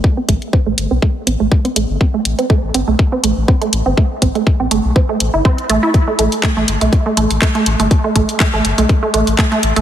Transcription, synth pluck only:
X:1
M:4/4
L:1/16
Q:"Swing 16ths" 1/4=122
K:Am
V:1 name="Synth pluck"
z C A, z C A, z C A, z C A, z C A, z | C A, z C A, z C A, z C A, z C A, z C | A, z C A, z C A, z C A, z E C z A, E | z A, A, z A, A, z A, z A, A, z A, A, z A, |
z A, A, z A, A, z A, z A, A, z A, A, z A, |]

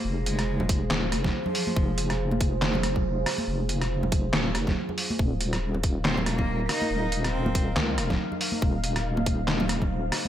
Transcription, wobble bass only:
X:1
M:4/4
L:1/8
Q:"Swing 16ths" 1/4=140
K:Fm
V:1 name="Wobble bass" clef=bass
F,,,4 E,,, F,,, z2 | F,,,6- F,,, z | F,,,4 E,,, F,,, z2 | E,,,6- E,,, z |
E,,,4 D,, E,,, z2 | E,,,6- E,,, z |]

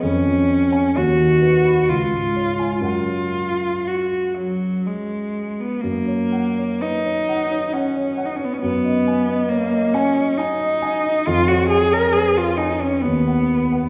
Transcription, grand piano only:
X:1
M:3/4
L:1/16
Q:1/4=66
K:F#
V:1 name="Grand piano"
E,, E, c g D,, D, B b C,, G,, c g | [F,,Acf]12 | F,, c f c B c f c f c f c | F,, d g d c d g d g d g d |
E,, c g c B z g c D,, f b f |]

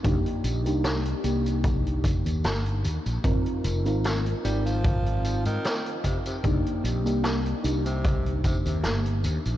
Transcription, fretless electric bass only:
X:1
M:4/4
L:1/16
Q:"Swing 16ths" 1/4=75
K:Ablyd
V:1 name="Fretless electric bass" clef=bass
C,, z B,,, C,,2 z C,,4 z E,, G,,,2 E,, B,,, | A,,, z F,,, A,,,2 z A,,,4- A,,, A,, z4 | C,, z B,,, C,,2 z C,,4 z E,, G,,,2 E,, B,,, |]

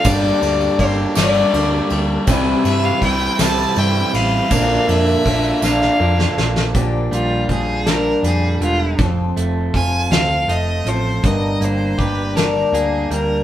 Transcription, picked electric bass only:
X:1
M:6/8
L:1/8
Q:3/8=54
K:Bblyd
V:1 name="Picked electric bass" clef=bass
G,,, D,, G,,, G,,, D,, D,, | C,, G,, C,, C,, G,, A,,, | B,,, F,, B,,, B,,, F,, B,,, | B,,, B,,, B,,,2 F,, E,,, |
F,,, F,,, F,,, D,, F,,, A,,, | G,,, G,,, G,,,2 D,, D,, |]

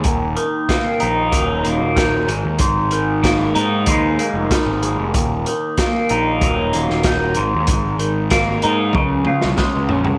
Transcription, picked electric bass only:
X:1
M:4/4
L:1/16
Q:1/4=94
K:Ebm
V:1 name="Picked electric bass" clef=bass
E,,,2 z4 B,,,2 E,,,2 E,,, E,,,3 A,,, E,, | A,,,6 A,,2 E,,2 z F,,, z A,,,2 F,,, | E,,,2 z4 B,,,2 E,,,2 E,,, E,,,3 A,,, E,, | A,,,6 A,,2 D,,2 z =C,, z D,, B,,, C,, |]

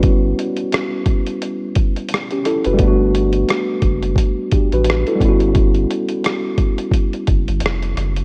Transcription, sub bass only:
X:1
M:4/4
L:1/16
Q:"Swing 16ths" 1/4=87
K:Amix
V:1 name="Sub bass" clef=bass
G,,,2 z12 z F,,, | G,,,4 z2 F,,,2 z3 A,,,2 z G,,,2- | G,,,2 z8 F,,, G,,, =F,,,2 ^F,,,2 |]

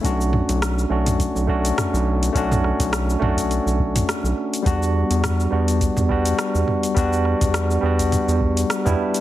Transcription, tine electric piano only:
X:1
M:4/4
L:1/16
Q:"Swing 16ths" 1/4=104
K:Edor
V:1 name="Tine electric piano"
[A,CDF]6 [A,CDF]4 [A,CDF] z4 z | [A,CDF]6 [A,CDF]6- [A,CDF] z3 | [G,B,DF]6 [G,B,DF]4 [G,B,DF] z4 z | [G,B,DF]6 [G,B,DF]6- [G,B,DF] [G,B,DE] z2 |]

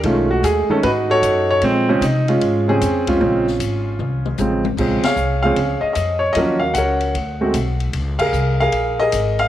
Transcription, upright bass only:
X:1
M:4/4
L:1/8
Q:"Swing" 1/4=152
K:Bbm
V:1 name="Upright bass" clef=bass
=B,,,2 ^D,, z ^G,,2 ^F,,2 | B,,2 C,2 A,,2 F,,2 | B,,,2 A,,,2 C,,2 =A,,,2 | B,,, z C,,2 D,, z F,,2 |
E,,2 D,,2 =D,,2 _C,,2 | D,,2 C,,2 B,,,2 A,,,2 |]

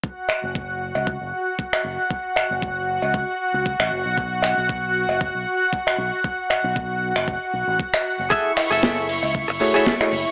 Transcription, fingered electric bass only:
X:1
M:4/4
L:1/16
Q:"Swing 16ths" 1/4=116
K:F#m
V:1 name="Fingered electric bass" clef=bass
z3 F,,,4 C,,2 F,,, z4 F,,, z | z3 F,,,4 C,,2 z2 C,,2 A,,, F,,, B,,,- | B,,,3 B,,,4 F,,,2 B,,, z4 B,,, z | z3 B,,,4 F,,,2 z B,,, A,,, z3 F,,, |
z3 F,,,4 C,,2 F,,, z4 F,,, z |]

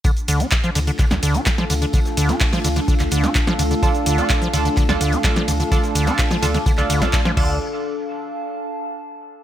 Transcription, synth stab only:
X:1
M:4/4
L:1/16
Q:1/4=127
K:Dm
V:1 name="Synth stab"
z16 | z16 | [DFA] z2 [DFA] z2 [DFA] z2 [DFA] z2 [DFA] z3 | [DFA] z2 [DFA] z2 [DFA] z2 [DFA] z [DFA] z2 [DFA]2 |
z16 |]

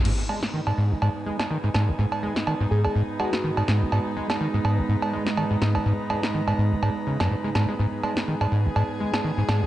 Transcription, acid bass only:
X:1
M:4/4
L:1/16
Q:"Swing 16ths" 1/4=124
K:G#m
V:1 name="Acid bass" clef=bass
G,, z G, z D, G,, G,, G,,, G,, z G, z D, G,, G,, G,,, | G,, z G, z D, G,, G,, G,,, G,, z G, z D, G,, G,, G,,, | G,, z G, z D, G,, G,, G,,, G,, z G, z D, G,, G,, G,,, | G,, z G, z D, G,, G,, G,,, G,, z C, F,, G,, G, G,, G, |
G,, z G, z D, G,, G,, G,,, G,, z G, z D, G,, G,, G,,, |]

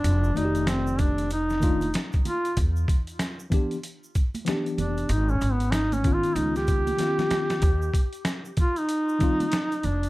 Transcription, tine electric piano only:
X:1
M:4/4
L:1/8
Q:"Swing 16ths" 1/4=95
K:Ephr
V:1 name="Tine electric piano"
z [_E,A,^FGd]3 z [E,A,D=F] z2 | z3 [E,B,DG] z2 [E,B,DG]2 | z3 [_E,_C_DF]3 [E,CDF]2 | z4 z [_E,G,CF] z2 |]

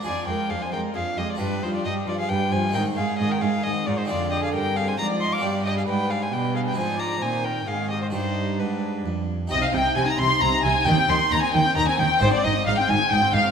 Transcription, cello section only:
X:1
M:3/4
L:1/8
Q:1/4=133
K:Cm
V:1 name="Cello section" clef=bass
F,, F,, F,, F,, F,, F,, | G,, G,, G,, G,, G,, G,, | A,, A,, A,, A,, A,, A,, | F,,2 G,,2 A,,2 |
G,,2 A,,2 =B,,2 | A,,2 B,,2 A,,2 | G,,2 A,,2 F,,2 | C, C, C, C, C, C, |
E, E, E, E, E, E, | A,, A,, A,, A,, A,, A,, |]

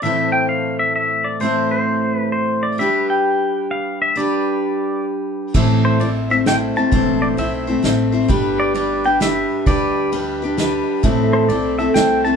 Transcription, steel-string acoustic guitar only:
X:1
M:3/4
L:1/8
Q:"Swing" 1/4=131
K:Am
V:1 name="Steel-string acoustic guitar"
[A,,E,A,CEc]6 | [A,,E,A,CEc]6 | [G,DGB]6 | [G,DGB]6 |
[A,,E,A,CEc]2 [A,CEc] [A,CEc] [A,CEc] [A,CEc] | [A,,E,A,CEc]2 [A,CEc] [A,CEc] [A,CEc] [A,CEc] | [G,DGB]2 [G,DGB] [DGB] [G,DGB]2 | [G,DGB]2 [G,DGB] [DGB] [G,DGB]2 |
[A,,E,A,CEA]2 [A,CEA] [A,CEA] [A,CEA] [A,CEA] |]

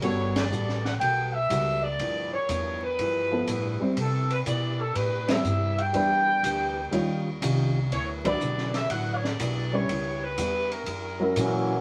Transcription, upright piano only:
X:1
M:4/4
L:1/8
Q:"Swing" 1/4=122
K:Glyd
V:1 name="Upright piano"
[G,B,FA] z6 z | z4 z [=F,B,EA] z [G,=CE=c] | z4 z [G,=CEB] z2 | [G,DEB]3 z [G,_E=F_d] z3 |
z [F,DEB] z4 z [G,CEB] | z4 z [F,CE^A] z2 |]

